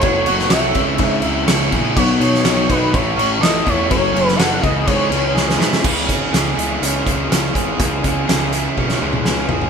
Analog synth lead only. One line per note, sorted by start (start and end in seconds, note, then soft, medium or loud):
0.00 0.23 C#5 loud
0.24 0.48 C#5 loud
0.50 1.68 E5 loud
1.96 2.72 C#5 loud
2.70 2.96 B4 medium
2.95 3.40 C#5 loud
3.41 3.70 D#5 loud
3.69 3.90 C#5 medium
3.91 4.27 C#5 loud
4.27 4.37 B4 loud
4.36 4.63 F#5 loud
4.62 4.88 D#5 loud
4.86 5.60 C#5 loud